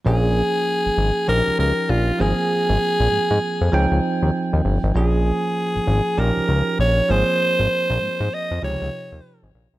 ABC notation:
X:1
M:4/4
L:1/16
Q:"Swing 16ths" 1/4=98
K:Bbdor
V:1 name="Alto saxophone"
A8 B2 B2 F2 A2- | A8- A2 z6 | A8 B4 d2 c2- | c6 e2 d6 z2 |]
V:2 name="Tine electric piano"
[F,B,DA]8 [F,DEG]6 [F,B,CA]2- | [F,B,CA]8 [F,CEg]8 | [F,B,DA]8 [F,DEG]6 [F,B,CA]2- | [F,B,CA]8 [C,F,EG]8 |]
V:3 name="Analog synth bass" clef=bass
B,,,3 z2 A,,, A,,, z B,,, D,, D,, z B,,,2 A,,, z | z A,,, z B,,, A,, A,, z F,, D,, D,, z E,, z E,, G,,, A,,, | B,,,3 z2 A,,, A,,, z B,,, D,, D,, z B,,,2 A,,, z | z A,,, z B,,, A,, A,, z F,, D,, D,, z E,, z A,,, B,,, C,, |]